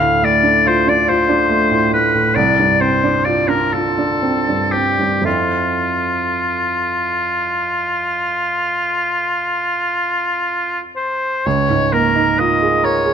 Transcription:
0, 0, Header, 1, 3, 480
1, 0, Start_track
1, 0, Key_signature, -1, "major"
1, 0, Tempo, 848656
1, 847, Tempo, 879765
1, 1807, Tempo, 969305
1, 2287, Tempo, 1039861
1, 2760, Time_signature, 12, 3, 24, 8
1, 4687, Tempo, 1011804
1, 5647, Tempo, 904977
1, 6542, End_track
2, 0, Start_track
2, 0, Title_t, "Oboe"
2, 0, Program_c, 0, 68
2, 0, Note_on_c, 0, 77, 63
2, 139, Note_on_c, 0, 74, 65
2, 147, Note_off_c, 0, 77, 0
2, 381, Note_on_c, 0, 72, 59
2, 389, Note_off_c, 0, 74, 0
2, 502, Note_on_c, 0, 74, 57
2, 511, Note_off_c, 0, 72, 0
2, 615, Note_on_c, 0, 72, 62
2, 624, Note_off_c, 0, 74, 0
2, 1081, Note_off_c, 0, 72, 0
2, 1084, Note_on_c, 0, 71, 58
2, 1312, Note_on_c, 0, 74, 55
2, 1321, Note_off_c, 0, 71, 0
2, 1562, Note_on_c, 0, 72, 57
2, 1571, Note_off_c, 0, 74, 0
2, 1803, Note_on_c, 0, 74, 53
2, 1811, Note_off_c, 0, 72, 0
2, 1918, Note_on_c, 0, 70, 46
2, 1925, Note_off_c, 0, 74, 0
2, 2041, Note_on_c, 0, 69, 50
2, 2048, Note_off_c, 0, 70, 0
2, 2511, Note_on_c, 0, 67, 50
2, 2518, Note_off_c, 0, 69, 0
2, 2756, Note_off_c, 0, 67, 0
2, 2762, Note_on_c, 0, 65, 45
2, 5335, Note_off_c, 0, 65, 0
2, 5416, Note_on_c, 0, 72, 48
2, 5653, Note_on_c, 0, 73, 60
2, 5661, Note_off_c, 0, 72, 0
2, 5900, Note_on_c, 0, 70, 55
2, 5908, Note_off_c, 0, 73, 0
2, 6145, Note_on_c, 0, 75, 61
2, 6153, Note_off_c, 0, 70, 0
2, 6387, Note_on_c, 0, 73, 67
2, 6395, Note_off_c, 0, 75, 0
2, 6542, Note_off_c, 0, 73, 0
2, 6542, End_track
3, 0, Start_track
3, 0, Title_t, "Grand piano"
3, 0, Program_c, 1, 0
3, 0, Control_c, 1, 64, 127
3, 0, Note_on_c, 1, 38, 42
3, 2, Note_on_c, 1, 45, 31
3, 127, Note_on_c, 1, 57, 34
3, 199, Note_off_c, 1, 45, 0
3, 245, Note_on_c, 1, 62, 31
3, 322, Note_off_c, 1, 57, 0
3, 373, Note_on_c, 1, 65, 37
3, 440, Note_off_c, 1, 62, 0
3, 491, Note_on_c, 1, 62, 32
3, 562, Note_off_c, 1, 65, 0
3, 610, Note_on_c, 1, 65, 40
3, 680, Note_off_c, 1, 62, 0
3, 730, Note_on_c, 1, 62, 34
3, 800, Note_off_c, 1, 65, 0
3, 845, Note_on_c, 1, 57, 32
3, 919, Note_off_c, 1, 62, 0
3, 962, Note_on_c, 1, 45, 31
3, 1034, Note_off_c, 1, 57, 0
3, 1081, Note_on_c, 1, 57, 32
3, 1152, Note_off_c, 1, 45, 0
3, 1200, Note_on_c, 1, 45, 29
3, 1272, Note_off_c, 1, 57, 0
3, 1298, Note_off_c, 1, 38, 0
3, 1318, Note_on_c, 1, 36, 44
3, 1319, Note_off_c, 1, 45, 0
3, 1329, Control_c, 1, 64, 0
3, 1404, Control_c, 1, 64, 127
3, 1443, Note_on_c, 1, 43, 29
3, 1564, Note_on_c, 1, 60, 29
3, 1635, Note_off_c, 1, 43, 0
3, 1687, Note_on_c, 1, 62, 32
3, 1759, Note_off_c, 1, 60, 0
3, 1806, Note_on_c, 1, 65, 32
3, 1878, Note_off_c, 1, 62, 0
3, 1920, Note_on_c, 1, 62, 29
3, 1993, Note_off_c, 1, 65, 0
3, 2045, Note_on_c, 1, 65, 33
3, 2113, Note_off_c, 1, 62, 0
3, 2167, Note_on_c, 1, 62, 28
3, 2239, Note_off_c, 1, 65, 0
3, 2286, Note_on_c, 1, 60, 26
3, 2357, Note_off_c, 1, 62, 0
3, 2407, Note_on_c, 1, 43, 24
3, 2472, Note_off_c, 1, 60, 0
3, 2522, Note_on_c, 1, 60, 25
3, 2592, Note_off_c, 1, 43, 0
3, 2640, Note_on_c, 1, 43, 27
3, 2712, Note_off_c, 1, 60, 0
3, 2741, Note_off_c, 1, 36, 0
3, 2743, Note_on_c, 1, 41, 31
3, 2746, Note_on_c, 1, 60, 27
3, 2756, Note_on_c, 1, 64, 23
3, 2759, Note_on_c, 1, 69, 22
3, 2761, Note_off_c, 1, 43, 0
3, 2770, Control_c, 1, 64, 0
3, 2864, Control_c, 1, 64, 127
3, 5620, Note_off_c, 1, 41, 0
3, 5624, Note_off_c, 1, 60, 0
3, 5627, Note_off_c, 1, 64, 0
3, 5629, Note_off_c, 1, 69, 0
3, 5653, Note_on_c, 1, 37, 42
3, 5659, Control_c, 1, 64, 0
3, 5750, Control_c, 1, 64, 127
3, 5776, Note_on_c, 1, 44, 31
3, 5896, Note_on_c, 1, 58, 33
3, 5969, Note_off_c, 1, 44, 0
3, 6021, Note_on_c, 1, 63, 33
3, 6090, Note_off_c, 1, 58, 0
3, 6146, Note_on_c, 1, 65, 36
3, 6213, Note_off_c, 1, 63, 0
3, 6266, Note_on_c, 1, 68, 34
3, 6333, Note_off_c, 1, 65, 0
3, 6382, Note_on_c, 1, 70, 42
3, 6449, Note_off_c, 1, 68, 0
3, 6498, Note_on_c, 1, 68, 36
3, 6542, Note_off_c, 1, 37, 0
3, 6542, Note_off_c, 1, 68, 0
3, 6542, Note_off_c, 1, 70, 0
3, 6542, End_track
0, 0, End_of_file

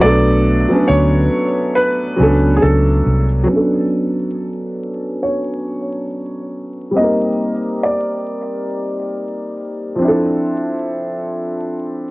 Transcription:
0, 0, Header, 1, 4, 480
1, 0, Start_track
1, 0, Key_signature, 2, "minor"
1, 0, Tempo, 869565
1, 7, Time_signature, 4, 2, 24, 8
1, 6684, End_track
2, 0, Start_track
2, 0, Title_t, "Felt piano"
2, 0, Program_c, 0, 0
2, 7, Note_on_c, 0, 74, 100
2, 484, Note_on_c, 0, 73, 80
2, 501, Note_off_c, 0, 74, 0
2, 967, Note_on_c, 0, 71, 88
2, 980, Note_off_c, 0, 73, 0
2, 1395, Note_off_c, 0, 71, 0
2, 1417, Note_on_c, 0, 68, 54
2, 1447, Note_off_c, 0, 68, 0
2, 1448, Note_on_c, 0, 69, 58
2, 1812, Note_off_c, 0, 69, 0
2, 2886, Note_on_c, 0, 73, 89
2, 3845, Note_on_c, 0, 75, 96
2, 3875, Note_off_c, 0, 73, 0
2, 4324, Note_on_c, 0, 74, 78
2, 4340, Note_off_c, 0, 75, 0
2, 5503, Note_off_c, 0, 74, 0
2, 6684, End_track
3, 0, Start_track
3, 0, Title_t, "Felt piano"
3, 0, Program_c, 1, 0
3, 0, Control_c, 1, 64, 127
3, 0, Note_on_c, 1, 54, 75
3, 0, Note_on_c, 1, 59, 70
3, 9, Note_on_c, 1, 57, 67
3, 14, Control_c, 1, 64, 0
3, 18, Note_on_c, 1, 62, 69
3, 27, Note_on_c, 1, 69, 81
3, 122, Control_c, 1, 64, 127
3, 316, Note_off_c, 1, 54, 0
3, 320, Note_off_c, 1, 59, 0
3, 325, Note_off_c, 1, 57, 0
3, 329, Note_off_c, 1, 62, 0
3, 333, Note_off_c, 1, 69, 0
3, 378, Note_on_c, 1, 54, 70
3, 386, Note_on_c, 1, 59, 65
3, 395, Note_on_c, 1, 61, 57
3, 403, Note_on_c, 1, 62, 66
3, 412, Note_on_c, 1, 71, 71
3, 1089, Note_off_c, 1, 54, 0
3, 1093, Note_off_c, 1, 59, 0
3, 1097, Note_off_c, 1, 61, 0
3, 1102, Note_off_c, 1, 62, 0
3, 1106, Note_off_c, 1, 71, 0
3, 1195, Note_on_c, 1, 54, 73
3, 1203, Note_on_c, 1, 59, 60
3, 1211, Note_on_c, 1, 61, 58
3, 1220, Note_on_c, 1, 62, 61
3, 1228, Note_on_c, 1, 69, 75
3, 1831, Note_off_c, 1, 54, 0
3, 1835, Note_off_c, 1, 59, 0
3, 1840, Note_off_c, 1, 61, 0
3, 1844, Note_off_c, 1, 62, 0
3, 1848, Note_off_c, 1, 69, 0
3, 1897, Note_on_c, 1, 54, 74
3, 1913, Note_on_c, 1, 59, 67
3, 1930, Note_on_c, 1, 61, 67
3, 1935, Control_c, 1, 64, 0
3, 1948, Note_on_c, 1, 62, 68
3, 1964, Note_on_c, 1, 69, 79
3, 2023, Control_c, 1, 64, 127
3, 3810, Note_off_c, 1, 54, 0
3, 3814, Note_on_c, 1, 55, 63
3, 3818, Note_off_c, 1, 59, 0
3, 3827, Note_off_c, 1, 61, 0
3, 3831, Note_on_c, 1, 60, 59
3, 3835, Note_off_c, 1, 62, 0
3, 3844, Note_off_c, 1, 69, 0
3, 3849, Note_on_c, 1, 58, 51
3, 3853, Control_c, 1, 64, 0
3, 3866, Note_on_c, 1, 63, 58
3, 3883, Note_on_c, 1, 70, 72
3, 3962, Control_c, 1, 64, 127
3, 5489, Note_off_c, 1, 55, 0
3, 5495, Note_on_c, 1, 53, 67
3, 5497, Note_off_c, 1, 60, 0
3, 5506, Note_off_c, 1, 58, 0
3, 5513, Note_on_c, 1, 60, 69
3, 5514, Note_off_c, 1, 63, 0
3, 5523, Note_off_c, 1, 70, 0
3, 5529, Note_on_c, 1, 62, 66
3, 5535, Control_c, 1, 64, 0
3, 5547, Note_on_c, 1, 64, 67
3, 5564, Note_on_c, 1, 69, 82
3, 5632, Control_c, 1, 64, 127
3, 6684, Note_off_c, 1, 53, 0
3, 6684, Note_off_c, 1, 60, 0
3, 6684, Note_off_c, 1, 62, 0
3, 6684, Note_off_c, 1, 64, 0
3, 6684, Note_off_c, 1, 69, 0
3, 6684, End_track
4, 0, Start_track
4, 0, Title_t, "Fingered electric bass"
4, 0, Program_c, 2, 33
4, 13, Note_on_c, 2, 35, 85
4, 352, Note_off_c, 2, 35, 0
4, 493, Note_on_c, 2, 38, 86
4, 703, Note_off_c, 2, 38, 0
4, 1213, Note_on_c, 2, 37, 73
4, 1423, Note_off_c, 2, 37, 0
4, 1453, Note_on_c, 2, 37, 100
4, 1663, Note_off_c, 2, 37, 0
4, 1692, Note_on_c, 2, 36, 92
4, 1903, Note_off_c, 2, 36, 0
4, 6684, End_track
0, 0, End_of_file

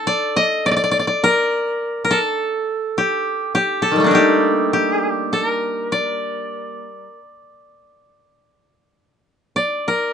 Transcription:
0, 0, Header, 1, 2, 480
1, 0, Start_track
1, 0, Tempo, 1156069
1, 509, Time_signature, 4, 2, 24, 8
1, 1470, Tempo, 1176471
1, 2430, Tempo, 1224490
1, 4092, End_track
2, 0, Start_track
2, 0, Title_t, "Koto"
2, 0, Program_c, 0, 107
2, 0, Note_on_c, 0, 69, 60
2, 29, Note_on_c, 0, 74, 78
2, 151, Note_on_c, 0, 75, 79
2, 176, Note_off_c, 0, 74, 0
2, 274, Note_on_c, 0, 74, 70
2, 295, Note_off_c, 0, 74, 0
2, 296, Note_on_c, 0, 74, 58
2, 299, Note_off_c, 0, 75, 0
2, 316, Note_off_c, 0, 74, 0
2, 317, Note_on_c, 0, 74, 61
2, 346, Note_off_c, 0, 74, 0
2, 347, Note_on_c, 0, 74, 56
2, 378, Note_off_c, 0, 74, 0
2, 380, Note_on_c, 0, 74, 68
2, 411, Note_off_c, 0, 74, 0
2, 413, Note_on_c, 0, 74, 53
2, 444, Note_off_c, 0, 74, 0
2, 445, Note_on_c, 0, 74, 60
2, 513, Note_on_c, 0, 70, 78
2, 538, Note_off_c, 0, 69, 0
2, 847, Note_off_c, 0, 70, 0
2, 849, Note_on_c, 0, 70, 56
2, 875, Note_on_c, 0, 69, 72
2, 899, Note_off_c, 0, 70, 0
2, 1110, Note_off_c, 0, 74, 0
2, 1236, Note_on_c, 0, 67, 66
2, 1471, Note_off_c, 0, 67, 0
2, 1473, Note_on_c, 0, 67, 70
2, 1583, Note_off_c, 0, 69, 0
2, 1584, Note_on_c, 0, 69, 66
2, 1623, Note_on_c, 0, 51, 29
2, 1640, Note_on_c, 0, 55, 33
2, 1657, Note_on_c, 0, 57, 40
2, 1675, Note_on_c, 0, 58, 42
2, 1684, Note_on_c, 0, 62, 43
2, 1702, Note_on_c, 0, 63, 47
2, 1708, Note_off_c, 0, 51, 0
2, 1716, Note_off_c, 0, 67, 0
2, 1718, Note_on_c, 0, 67, 65
2, 1955, Note_off_c, 0, 67, 0
2, 1956, Note_on_c, 0, 67, 63
2, 2199, Note_off_c, 0, 69, 0
2, 2199, Note_on_c, 0, 69, 58
2, 2224, Note_off_c, 0, 57, 0
2, 2252, Note_off_c, 0, 69, 0
2, 2252, Note_on_c, 0, 70, 58
2, 2441, Note_on_c, 0, 74, 65
2, 2464, Note_off_c, 0, 63, 0
2, 2664, Note_off_c, 0, 62, 0
2, 2775, Note_off_c, 0, 67, 0
2, 2797, Note_off_c, 0, 58, 0
2, 2883, Note_off_c, 0, 55, 0
2, 2929, Note_off_c, 0, 70, 0
2, 3855, Note_off_c, 0, 74, 0
2, 3867, Note_on_c, 0, 74, 57
2, 3992, Note_on_c, 0, 70, 54
2, 4092, Note_off_c, 0, 70, 0
2, 4092, Note_off_c, 0, 74, 0
2, 4092, End_track
0, 0, End_of_file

